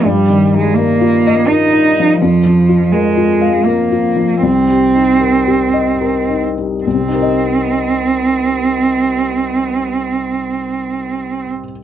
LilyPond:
<<
  \new Staff \with { instrumentName = "Felt piano" } { \time 3/4 \key c \minor \tempo 4 = 74 \tuplet 3/2 { <g, f>8 ees8 ees'8 bes'8 f'8 ees''8 bes'8 ees'8 f8 } | \tuplet 3/2 { f,8 f8 f'8 bes'8 f'8 f''8 bes'8 f'8 f8 } | \tuplet 3/2 { c,8 g8 ees'8 bes'8 g'8 ees''8 bes'8 ees'8 g8 } | <c, c g ees' bes' ees''>2.~ |
<c, c g ees' bes' ees''>2. | }
  \new Staff \with { instrumentName = "Cello" } { \time 3/4 \key c \minor g8. aes16 bes4 ees'4 | f4 aes4 bes4 | c'2~ c'8 r8 | c'2.~ |
c'2. | }
>>